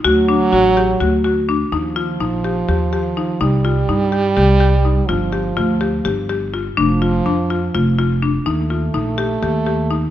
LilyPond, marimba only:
\new Staff \with { instrumentName = "Marimba" } { \time 7/8 \key ees \lydian \tempo 4 = 125 fis'8 d'8 fis'8 g'8 fis'8 fis'8 d'8 | ees'8 f'8 ees'8 g'8 g'8 g'8 ees'8 | ees'8 f'8 ees'8 g'8 g'8 g'8 ees'8 | f'8 g'8 f'8 g'8 g'8 g'8 f'8 |
d'8 f'8 d'8 f'8 f'8 f'8 d'8 | ees'8 f'8 ees'8 g'8 g'8 g'8 ees'8 | }